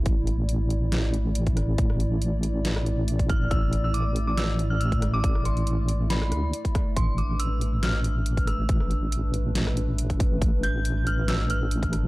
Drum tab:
HH |x-x-x-x-x-x-xxx-|x-x-x-x-x-x-xxx-|x-x-x-x-x-x-xxx-|x-xxx-x-x-x-xxx-|
SD |--------o-----r-|-r------or------|--------o-----r-|-r------orr---r-|
BD |o------------o--|o------------oo-|o------------o--|o------------oo-|

HH |x-x-x-x-x-x-xxx-|x-x-x-x-x-x-xxx-|x-x-x-x-x-x-xxx-|
SD |--------o-----r-|-r------or------|--------o-----r-|
BD |o------------o--|o------------oo-|o------------o--|